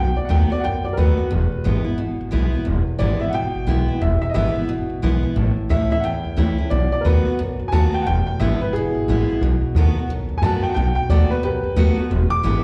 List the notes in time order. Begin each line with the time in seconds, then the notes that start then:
Already playing: B1 B2 G5
0.16 D5, muted upright bass stroke
0.25 D#3 A3 F#5
0.30 D#2 B3 F#4 G5
0.50 B3 F#4 D5
0.60 B1 F#5
0.64 F#2 G5
0.84 D#2 D5
0.93 A#4
0.97 D#2 D#3 A3 B3 F#4 B4
1.17 B3 F#4, muted upright bass stroke
1.31 E1 E2
1.52 muted upright bass stroke
1.64 G#1 E3 G#3 B3 E4
1.84 B3 E4, muted upright bass stroke
1.98 E1 B2
2.21 G#1
2.31 B1 E3 G#3 B3 E4
2.52 B3 E4, muted upright bass stroke
2.65 E1 E2
2.87 muted upright bass stroke
2.98 G#1 E3 G#3 B3 E4 D5
3.19 B3 E4 E5, muted upright bass stroke
3.29 E1 B2 F#5
3.34 G5
3.54 G#1
3.67 B1 E3 G#3 B3 E4
3.88 B3 E4, muted upright bass stroke
4.01 E1 E2 E5
4.22 E5, muted upright bass stroke
4.30 D#5
4.34 G#1 E3 G#3 B3 E4 E5
4.55 B3 E4, muted upright bass stroke
4.69 E1 B2
4.90 G#1
5.02 B1 E3 G#3 B3 E4
5.23 B3 E4, muted upright bass stroke
5.36 A1 A2
5.57 muted upright bass stroke
5.69 C#2 E3 A3 C#4 E4 E5
5.90 C#4 E4 E5, muted upright bass stroke
6.00 E2 F#5
6.04 A1 G5
6.24 C#2
6.37 C#2 E3 A3 C#4 E4
6.58 C#4 E4, muted upright bass stroke
6.70 B1 B2 D5
6.92 D5, muted upright bass stroke
7.01 D#2 D#3 A#4
7.05 A3 B3 F#4 B4
7.25 B3 F#4, muted upright bass stroke
7.39 B1 F#2
7.59 D#2
7.68 D#3 G#5
7.72 D#2 A3 B3 F#4 A5
7.93 G5, muted upright bass stroke
8.02 F#5
8.06 E1 E2 G5
8.27 G5, muted upright bass stroke
8.39 G#1 E3 G#3 B3 E4 E5
8.61 B3 E4 B4, muted upright bass stroke
8.73 E1 B2 E4 G#4
8.94 G#1
9.08 A1 E3 G#3 B3 E4
9.28 B3 E4, muted upright bass stroke
9.41 B1 B2
9.62 muted upright bass stroke
9.75 D#2 D#3 A3 B3 F#4
9.95 B3 F#4, muted upright bass stroke
10.08 B1 F#2
10.29 D#2
10.38 G#5
10.42 F#2 D#3 A3 B3 F#4 A5
10.63 B3 F#4 G5, muted upright bass stroke
10.69 F#5
10.74 B1 B2 G5
10.95 G5, muted upright bass stroke
11.09 D#2 D#3 A3 B3 F#4 D5
11.30 B3 F#4 B4
11.43 B1 F#2 G4 B4
11.63 D#2
11.76 D#2 D#3 A3 B3 F#4
11.97 B3 F#4, muted upright bass stroke
12.11 E1 E2
12.30 D6
12.43 G#1 E3 G#3 B3 E4